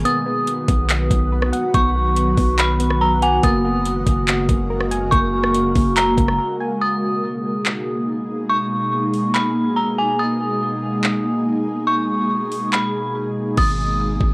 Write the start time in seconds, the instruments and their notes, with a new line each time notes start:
Already playing: ambient pad D#3
0.05 ambient pad F#3 B3 F#4 B4, synth pluck B3, synth bell D#6, closed hi-hat
0.26 synth pluck B3
0.47 closed hi-hat
0.68 808-style bass B1, synth pluck B3, kick, closed hi-hat
0.90 clap, closed hi-hat
1.11 808-style bass B1, synth pluck B3, kick, closed hi-hat
1.32 synth pluck B4
1.42 cross-stick
1.53 synth pluck F#5, closed hi-hat
1.74 808-style bass B1, synth pluck B3, synth bell C#6, kick, closed hi-hat
1.96 synth pluck B3
2.16 closed hi-hat
2.37 808-style bass B1, synth pluck B3, kick, open hi-hat
2.59 synth bell B5, clap, closed hi-hat
2.80 synth pluck B3, closed hi-hat
2.90 cross-stick
3.01 synth pluck B4, synth bell A#5
3.22 synth pluck F#5, synth bell G#5, closed hi-hat
3.43 808-style bass F#1, ambient pad C#3 G#3 A#3 A#4, synth pluck A#3, synth bell D#6, kick, closed hi-hat
3.65 synth pluck A#3
3.85 closed hi-hat
4.06 808-style bass F#1, synth pluck A#3, kick, closed hi-hat
4.28 clap, closed hi-hat
4.49 808-style bass F#1, synth pluck A#3, kick, closed hi-hat
4.70 synth pluck A#4
4.80 cross-stick
4.91 synth pluck G#5, closed hi-hat
5.11 808-style bass F#1, synth pluck A#3, synth bell C#6, kick, closed hi-hat
5.34 synth pluck A#3
5.44 cross-stick
5.54 closed hi-hat
5.75 808-style bass F#1, synth pluck A#3, kick, open hi-hat
5.97 synth bell A#5, clap, closed hi-hat
6.17 808-style bass F#1, synth pluck A#3, kick, closed hi-hat
6.28 cross-stick
6.38 synth pluck A#4
6.60 synth pluck G#5
6.81 ambient pad B2 G#3 A#3 D#4 G#4, synth bell D#6
7.66 clap
8.49 synth bell C#6
9.13 open hi-hat
9.34 synth bell B5, clap
9.76 synth bell A#5
9.98 synth bell G#5
10.19 ambient pad G#4, synth bell D#6
11.04 clap
11.87 synth bell C#6
12.52 open hi-hat
12.73 synth bell B5, clap
13.57 808-style bass G#1, ambient pad D#3 G#3 A#3 B3 G#4, synth bell D#6, kick, crash
14.21 808-style bass G#1, kick